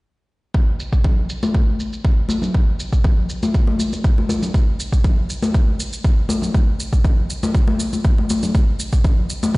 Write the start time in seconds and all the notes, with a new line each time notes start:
0.54 kick, shaker
0.80 shaker
0.93 kick, shaker
1.04 kick, low conga, shaker
1.29 shaker
1.43 high conga, shaker
1.55 kick, high conga, shaker
1.80 shaker
1.93 shaker
2.05 kick, shaker
2.29 high conga, shaker
2.42 low conga, shaker
2.55 kick, shaker
2.80 shaker
2.93 kick, shaker
3.04 kick, low conga, shaker
3.29 shaker
3.43 high conga, shaker
3.54 kick, shaker
3.67 high conga
3.79 high conga, shaker
3.93 high conga, shaker
4.04 kick, shaker
4.18 high conga
4.29 high conga, shaker
4.42 low conga, shaker
4.54 kick, shaker
4.80 shaker
4.93 kick, shaker
5.04 kick, low conga, shaker
5.30 shaker
5.42 high conga, shaker
5.54 kick, high conga, shaker
5.80 shaker
5.93 shaker
6.04 kick, shaker
6.29 high conga, shaker
6.42 low conga, shaker
6.54 kick, shaker
6.80 shaker
6.93 kick, shaker
7.04 kick, low conga, shaker
7.30 shaker
7.43 high conga, shaker
7.55 kick, shaker
7.67 high conga
7.79 high conga, shaker
7.93 high conga, shaker
8.05 kick, shaker
8.18 high conga
8.30 high conga, shaker
8.43 low conga, shaker
8.55 kick, shaker
8.79 shaker
8.93 kick, shaker
9.04 kick, low conga, shaker
9.30 shaker
9.43 high conga, shaker
9.55 kick